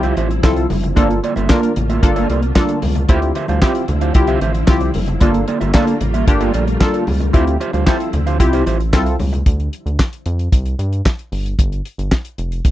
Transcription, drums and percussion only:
0.03 closed hi-hat
0.17 closed hi-hat, muted conga
0.31 closed hi-hat
0.44 kick, snare, clap, muted conga, high conga
0.56 closed hi-hat
0.70 open hi-hat, muted conga, high conga, low conga
0.83 closed hi-hat, low conga
0.96 kick, closed hi-hat, muted conga
1.10 closed hi-hat
1.24 closed hi-hat
1.36 closed hi-hat, high conga
1.49 kick, snare, clap, muted conga
1.63 closed hi-hat
1.76 closed hi-hat, muted conga, low conga
1.90 closed hi-hat
2.03 kick, closed hi-hat
2.16 closed hi-hat
2.30 closed hi-hat
2.42 closed hi-hat
2.56 kick, snare, clap, muted conga, high conga
2.69 closed hi-hat
2.82 open hi-hat, high conga, low conga
2.95 closed hi-hat, low conga
3.09 kick, closed hi-hat, muted conga
3.22 closed hi-hat
3.35 closed hi-hat, muted conga
3.48 closed hi-hat, high conga
3.62 kick, snare, clap
3.75 closed hi-hat
3.88 closed hi-hat, muted conga, low conga
4.01 closed hi-hat
4.14 kick, closed hi-hat, muted conga
4.27 closed hi-hat
4.41 closed hi-hat
4.55 closed hi-hat
4.67 kick, snare, clap, muted conga, high conga
4.80 closed hi-hat
4.94 open hi-hat, muted conga, high conga, low conga
5.08 closed hi-hat, low conga
5.21 kick, closed hi-hat, muted conga
5.34 closed hi-hat
5.48 closed hi-hat, muted conga
5.61 closed hi-hat, high conga
5.74 kick, snare, clap, muted conga
5.87 closed hi-hat
6.01 closed hi-hat, muted conga, low conga
6.14 closed hi-hat
6.28 kick, closed hi-hat, muted conga
6.41 closed hi-hat
6.54 closed hi-hat, muted conga
6.68 closed hi-hat
6.81 kick, snare, clap, high conga
6.94 closed hi-hat
7.07 open hi-hat, muted conga, high conga, low conga
7.20 closed hi-hat, low conga
7.33 kick, closed hi-hat, muted conga
7.47 closed hi-hat
7.61 closed hi-hat, muted conga
7.73 closed hi-hat, high conga
7.87 kick, snare, clap, muted conga
8.00 closed hi-hat
8.13 closed hi-hat, muted conga, low conga
8.27 closed hi-hat
8.40 kick, closed hi-hat, muted conga
8.53 closed hi-hat
8.66 closed hi-hat, muted conga
8.80 closed hi-hat
8.93 kick, snare, clap, high conga
9.06 closed hi-hat
9.20 open hi-hat, muted conga, high conga, low conga
9.33 closed hi-hat, low conga
9.46 kick, closed hi-hat
9.60 closed hi-hat
9.73 closed hi-hat
9.87 closed hi-hat
9.99 kick, snare, clap
10.13 closed hi-hat
10.26 closed hi-hat
10.39 closed hi-hat
10.52 kick, closed hi-hat
10.66 closed hi-hat
10.79 closed hi-hat
10.93 closed hi-hat
11.06 kick, snare, clap
11.19 closed hi-hat
11.32 open hi-hat
11.46 closed hi-hat
11.59 kick, closed hi-hat
11.72 closed hi-hat
11.85 closed hi-hat
11.99 closed hi-hat
12.12 kick, snare, clap
12.25 closed hi-hat
12.38 closed hi-hat
12.52 closed hi-hat
12.65 kick, closed hi-hat

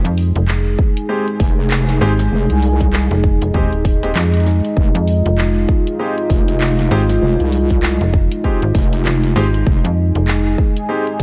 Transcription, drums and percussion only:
0.05 closed hi-hat
0.18 open hi-hat
0.36 closed hi-hat
0.48 clap
0.79 kick
0.97 closed hi-hat
1.28 closed hi-hat
1.40 kick, open hi-hat
1.71 clap, closed hi-hat
1.89 snare, closed hi-hat
2.19 snare, closed hi-hat
2.50 closed hi-hat
2.62 open hi-hat
2.81 kick, closed hi-hat
2.93 clap
3.24 kick
3.42 closed hi-hat
3.54 kick
3.73 closed hi-hat
3.85 kick, open hi-hat
4.03 closed hi-hat
4.16 clap, snare
4.34 closed hi-hat
4.37 closed hi-hat
4.40 closed hi-hat
4.43 snare, closed hi-hat
4.46 closed hi-hat
4.51 closed hi-hat
4.56 closed hi-hat
4.60 closed hi-hat
4.65 closed hi-hat
4.77 kick
4.95 closed hi-hat
5.08 open hi-hat
5.26 closed hi-hat
5.38 clap
5.69 kick
5.87 closed hi-hat
6.18 closed hi-hat
6.30 kick, open hi-hat
6.48 closed hi-hat
6.61 clap
6.79 snare, closed hi-hat
7.09 snare, closed hi-hat
7.40 closed hi-hat
7.52 open hi-hat
7.70 kick, closed hi-hat
7.83 clap
8.14 kick
8.32 closed hi-hat
8.44 kick
8.62 closed hi-hat
8.75 kick, open hi-hat
8.93 closed hi-hat
9.05 clap, snare
9.24 closed hi-hat
9.36 snare
9.54 closed hi-hat
9.67 kick
9.85 closed hi-hat
10.15 closed hi-hat
10.28 clap
10.58 kick
10.77 closed hi-hat
11.07 closed hi-hat
11.20 kick, open hi-hat

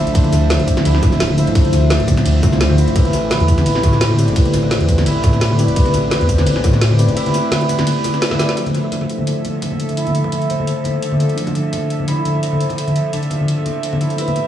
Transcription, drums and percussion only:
0.07 closed hi-hat
0.15 kick, closed hi-hat, ride
0.24 closed hi-hat, muted conga, high conga
0.33 closed hi-hat, cabasa
0.50 snare, closed hi-hat, ride, muted conga, high conga
0.60 closed hi-hat
0.68 kick, closed hi-hat, cabasa
0.77 snare, closed hi-hat, high conga, cabasa
0.85 closed hi-hat, ride, muted conga
0.95 snare
1.03 kick, closed hi-hat, high conga, cabasa
1.12 snare, muted conga, cabasa
1.20 snare, closed hi-hat, ride
1.30 high conga
1.38 closed hi-hat, cabasa
1.47 closed hi-hat, muted conga
1.55 kick, closed hi-hat, ride
1.65 closed hi-hat, high conga
1.73 closed hi-hat, muted conga, cabasa
1.90 snare, closed hi-hat, ride, high conga
2.00 closed hi-hat
2.08 kick, closed hi-hat, muted conga, cabasa
2.17 snare, closed hi-hat, high conga, cabasa
2.26 closed hi-hat, ride
2.36 muted conga
2.43 kick, closed hi-hat, high conga, cabasa
2.53 snare, cabasa
2.61 snare, closed hi-hat, ride
2.70 muted conga, high conga
2.78 closed hi-hat, cabasa
2.88 closed hi-hat
2.96 kick, closed hi-hat, ride
3.05 closed hi-hat, muted conga, high conga
3.13 closed hi-hat, cabasa
3.30 snare, closed hi-hat, ride, high conga
3.40 closed hi-hat, muted conga
3.48 kick, closed hi-hat, cabasa
3.58 snare, closed hi-hat, high conga, cabasa
3.66 closed hi-hat, ride, muted conga
3.75 snare
3.83 kick, closed hi-hat, high conga, cabasa
3.93 snare, cabasa
4.01 snare, closed hi-hat, ride, muted conga
4.11 high conga
4.19 closed hi-hat, cabasa
4.28 closed hi-hat, muted conga
4.36 kick, closed hi-hat, ride
4.45 closed hi-hat, high conga
4.54 closed hi-hat, cabasa
4.63 muted conga
4.71 snare, closed hi-hat, ride, high conga
4.80 closed hi-hat
4.89 kick, closed hi-hat, muted conga, cabasa
4.98 snare, closed hi-hat, high conga, cabasa
5.06 closed hi-hat, ride
5.23 kick, closed hi-hat, muted conga, high conga, cabasa
5.33 snare, cabasa
5.41 snare, closed hi-hat, ride
5.50 muted conga, high conga
5.59 closed hi-hat, cabasa
5.68 closed hi-hat
5.76 kick, closed hi-hat, ride
5.85 closed hi-hat, muted conga, high conga
5.94 closed hi-hat, cabasa
6.11 snare, closed hi-hat, ride, muted conga, high conga
6.21 closed hi-hat
6.29 kick, closed hi-hat, cabasa
6.38 snare, closed hi-hat, high conga, cabasa
6.46 closed hi-hat, ride, muted conga
6.56 snare
6.64 kick, closed hi-hat, high conga, cabasa
6.73 snare, muted conga, cabasa
6.81 snare, closed hi-hat, ride
6.91 high conga
6.99 closed hi-hat, cabasa
7.08 closed hi-hat, muted conga
7.17 closed hi-hat, ride
7.26 closed hi-hat, high conga
7.34 closed hi-hat, muted conga, cabasa
7.51 snare, closed hi-hat, ride, high conga
7.61 closed hi-hat
7.69 closed hi-hat, muted conga, cabasa
7.79 snare, closed hi-hat, high conga, cabasa
7.87 closed hi-hat, ride
7.96 muted conga
8.04 closed hi-hat, high conga, cabasa
8.14 snare, cabasa
8.22 snare, closed hi-hat, ride
8.31 snare, muted conga, high conga
8.39 snare, closed hi-hat, cabasa
8.49 snare, closed hi-hat
8.57 closed hi-hat
8.66 closed hi-hat, muted conga, high conga
8.75 closed hi-hat
8.91 closed hi-hat, high conga
9.01 muted conga
9.10 closed hi-hat
9.18 high conga
9.27 closed hi-hat, muted conga
9.45 closed hi-hat, high conga
9.62 closed hi-hat, muted conga
9.71 high conga
9.80 closed hi-hat
9.89 closed hi-hat, muted conga
9.97 closed hi-hat
10.07 closed hi-hat, high conga
10.15 closed hi-hat
10.24 muted conga
10.32 closed hi-hat, high conga
10.42 closed hi-hat
10.50 closed hi-hat, muted conga
10.60 high conga
10.67 closed hi-hat
10.84 closed hi-hat, muted conga, high conga
11.03 closed hi-hat
11.12 muted conga, high conga
11.20 closed hi-hat
11.29 closed hi-hat
11.38 closed hi-hat
11.47 closed hi-hat, muted conga, high conga
11.55 closed hi-hat
11.73 closed hi-hat, muted conga, high conga
11.90 closed hi-hat
12.00 high conga
12.08 closed hi-hat, muted conga
12.25 closed hi-hat, high conga
12.35 muted conga
12.43 closed hi-hat
12.52 high conga
12.61 closed hi-hat
12.70 closed hi-hat, muted conga
12.78 closed hi-hat
12.87 closed hi-hat, high conga
12.96 closed hi-hat, muted conga
13.13 closed hi-hat, high conga
13.23 closed hi-hat
13.30 closed hi-hat, muted conga
13.41 high conga
13.48 closed hi-hat
13.58 muted conga
13.66 closed hi-hat, high conga
13.83 closed hi-hat
13.93 muted conga, high conga
14.01 closed hi-hat
14.10 closed hi-hat
14.18 closed hi-hat
14.28 closed hi-hat, muted conga, high conga
14.36 closed hi-hat

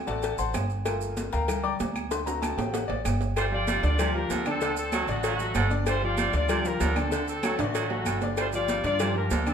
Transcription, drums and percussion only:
0.07 cowbell, maracas
0.23 cowbell, high conga, low agogo, maracas
0.38 high conga, low agogo, maracas
0.54 cowbell, high conga, low timbale, low agogo, claves, maracas
0.70 maracas
0.86 cowbell, high conga, low agogo, claves, maracas
1.01 high conga, maracas
1.17 cowbell, high conga, low timbale, low agogo, maracas
1.33 cowbell, high conga, maracas
1.48 cowbell, high conga, low conga, low agogo, claves, maracas
1.64 high conga, low conga
1.80 cowbell, high conga, low timbale, low agogo, maracas
1.95 high conga, low agogo, claves, maracas
2.11 cowbell, high conga, high timbale, maracas
2.27 high conga, high timbale, maracas
2.43 cowbell, high conga, high timbale, low agogo, claves, maracas
2.58 cowbell, high conga, low timbale, maracas
2.74 cowbell, high conga, low timbale, low agogo, maracas
2.90 high conga, low timbale, low agogo
3.05 cowbell, high conga, low timbale, low agogo, claves, maracas
3.21 low timbale, maracas
3.36 cowbell, high conga, low agogo, claves, maracas
3.52 high conga
3.67 cowbell, high conga, low timbale, low agogo, maracas
3.83 cowbell, high conga, maracas
3.99 cowbell, high conga, low conga, low agogo, claves, maracas
4.15 high conga
4.30 cowbell, high conga, low timbale, low agogo, maracas
4.46 high conga, low agogo, claves, maracas
4.61 cowbell, high conga, maracas
4.77 high conga, maracas
4.92 cowbell, high conga, low timbale, low agogo, claves, maracas
5.08 cowbell, high conga, maracas
5.23 cowbell, high conga, low agogo, maracas
5.39 high conga, low agogo, maracas
5.55 cowbell, high conga, low timbale, low agogo, claves, maracas
5.71 high conga, maracas
5.86 cowbell, high conga, low agogo, claves, maracas
6.02 high conga
6.18 cowbell, high conga, low timbale, low agogo, maracas
6.33 cowbell, high conga, maracas
6.49 cowbell, high conga, low conga, low agogo, claves, maracas
6.64 high conga, maracas
6.80 cowbell, high conga, low timbale, low agogo, maracas
6.96 high conga, low agogo, claves, maracas
7.12 cowbell, high conga, maracas
7.27 high conga, maracas
7.43 cowbell, high conga, high timbale, low agogo, claves, maracas
7.59 cowbell, high conga, high timbale, maracas
7.74 cowbell, high conga, low agogo, maracas
7.90 high conga, low timbale, low agogo
8.05 cowbell, high conga, low agogo, claves, maracas
8.22 low timbale, maracas
8.37 cowbell, high conga, low agogo, claves, maracas
8.53 high conga, maracas
8.68 cowbell, high conga, low timbale, low agogo, maracas
8.84 cowbell, high conga, maracas
8.99 cowbell, high conga, low conga, low agogo, claves, maracas
9.16 high conga, low conga
9.31 cowbell, high conga, low timbale, low agogo, maracas
9.46 high conga, low agogo, claves, maracas

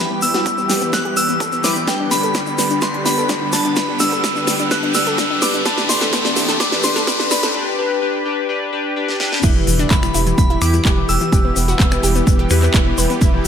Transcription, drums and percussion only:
0.22 open hi-hat, shaker
0.34 snare, closed hi-hat, shaker
0.46 kick, closed hi-hat, shaker
0.58 shaker
0.69 snare, open hi-hat, shaker
0.81 closed hi-hat, shaker
0.93 kick, snare, closed hi-hat, shaker
1.05 closed hi-hat
1.17 open hi-hat, shaker
1.29 closed hi-hat, shaker
1.40 kick, closed hi-hat, shaker
1.52 closed hi-hat, shaker
1.64 snare, open hi-hat, shaker
1.76 closed hi-hat, shaker
1.88 kick, snare, closed hi-hat, shaker
2.11 snare, open hi-hat, shaker
2.23 closed hi-hat, shaker
2.34 kick, snare, closed hi-hat, shaker
2.46 shaker
2.58 snare, open hi-hat, shaker
2.70 closed hi-hat, shaker
2.82 kick, snare, closed hi-hat, shaker
2.94 closed hi-hat
3.06 snare, open hi-hat, shaker
3.18 closed hi-hat, shaker
3.29 kick, snare, closed hi-hat, shaker
3.52 snare, open hi-hat, shaker
3.65 closed hi-hat, shaker
3.76 kick, snare, closed hi-hat, shaker
3.99 snare, open hi-hat, shaker
4.12 closed hi-hat, shaker
4.24 kick, snare, closed hi-hat, shaker
4.36 shaker
4.47 snare, open hi-hat, shaker
4.59 closed hi-hat, shaker
4.71 kick, snare, closed hi-hat, shaker
4.83 closed hi-hat
4.94 snare, open hi-hat, shaker
5.07 closed hi-hat, shaker
5.18 kick, snare, closed hi-hat, shaker
5.42 snare, open hi-hat, shaker
5.54 closed hi-hat, shaker
5.65 kick, snare, closed hi-hat, shaker
5.78 snare
5.89 snare, open hi-hat, shaker
6.01 snare, closed hi-hat, shaker
6.13 kick, snare, closed hi-hat, shaker
6.25 snare, shaker
6.36 snare, open hi-hat, shaker
6.49 snare, closed hi-hat, shaker
6.60 kick, snare, closed hi-hat, shaker
6.72 snare, closed hi-hat
6.83 snare, open hi-hat, shaker
6.96 snare, closed hi-hat, shaker
7.07 kick, snare, closed hi-hat, shaker
7.20 snare
7.31 snare, open hi-hat, shaker
7.43 snare, closed hi-hat, shaker
9.09 snare
9.20 snare
9.32 snare
9.43 kick, closed hi-hat, crash, shaker
9.67 open hi-hat, shaker
9.79 closed hi-hat, shaker
9.91 kick, clap, closed hi-hat, shaker
10.03 finger snap, shaker
10.14 open hi-hat, shaker
10.26 closed hi-hat, shaker
10.38 kick, closed hi-hat, shaker
10.50 closed hi-hat
10.62 finger snap, open hi-hat, shaker
10.73 closed hi-hat, shaker
10.85 kick, clap, closed hi-hat, shaker
11.09 open hi-hat, shaker
11.21 closed hi-hat, shaker
11.32 kick, closed hi-hat, shaker
11.56 open hi-hat, shaker
11.68 closed hi-hat, shaker
11.80 kick, clap, closed hi-hat, shaker
11.92 finger snap, shaker
12.03 open hi-hat, shaker
12.15 closed hi-hat, shaker
12.27 kick, closed hi-hat, shaker
12.39 closed hi-hat
12.50 finger snap, open hi-hat, shaker
12.63 clap, closed hi-hat, shaker
12.74 kick, clap, closed hi-hat, shaker
12.98 open hi-hat, shaker
13.10 closed hi-hat, shaker
13.21 kick, closed hi-hat, shaker

